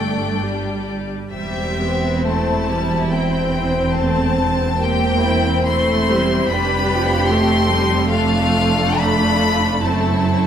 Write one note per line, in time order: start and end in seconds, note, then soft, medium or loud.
0.00 1.11 G1 soft
0.00 1.12 G2 soft
0.00 0.41 A3 soft
0.00 1.12 D4 soft
0.00 1.08 D5 soft
0.00 0.87 G5 soft
0.43 1.30 G3 soft
1.31 6.46 E1 soft
1.31 6.47 E2 soft
1.31 1.75 G3 soft
1.31 3.11 C4 soft
1.31 2.21 G4 soft
1.31 3.08 C5 soft
1.31 2.21 E5 medium
1.78 2.25 B3 soft
2.25 2.69 A3 soft
2.25 3.96 E4 soft
2.25 3.12 A5 medium
2.68 3.12 G3 soft
3.12 4.78 C4 soft
3.12 4.75 C5 soft
3.12 3.96 G5 medium
3.95 4.37 A3 soft
3.95 4.78 C4 soft
3.95 4.78 A5 medium
4.36 4.78 B3 soft
4.78 5.66 A#3 soft
4.78 5.67 C4 soft
4.78 5.22 G4 soft
4.78 6.47 C5 soft
4.78 5.67 G5 medium
5.22 5.66 E4 medium
5.67 6.10 A3 medium
5.67 6.50 C4 medium
5.67 6.49 E4 medium
5.67 6.50 C6 medium
6.10 6.49 G3 medium
6.49 9.79 F1 medium
6.49 9.79 F2 medium
6.49 6.91 G3 medium
6.49 7.32 D4 soft
6.49 8.12 G4 medium
6.49 7.31 B4 medium
6.49 7.30 B5 medium
6.91 7.32 F3 medium
7.31 7.72 A3 medium
7.31 8.13 C4 soft
7.31 8.11 A4 soft
7.31 8.12 C6 medium
7.72 8.13 G3 medium
8.12 9.80 A3 medium
8.12 8.54 D4 medium
8.12 8.99 F4 medium
8.12 8.98 A4 medium
8.12 8.98 F5 medium
8.55 9.80 D4 medium
8.99 9.81 F4 medium
8.99 9.81 A4 medium
8.99 9.83 B5 medium
9.82 10.47 F#1 medium
9.82 10.47 F#2 soft
9.82 10.22 A3 soft
9.82 10.47 C4 soft
9.82 10.47 E4 soft
9.82 10.47 A4 soft
9.82 10.47 A5 medium
10.23 10.47 A3 soft